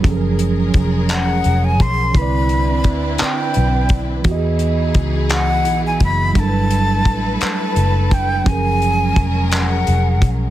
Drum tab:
HH |xxxxxx|xxxxxx|xxxxxx|xxxxxx|
CP |---x--|---x--|---x--|---x--|
BD |o-o--o|o-o--o|o-o--o|o-o--o|

HH |xxxxxx|
CP |---x--|
BD |o-o--o|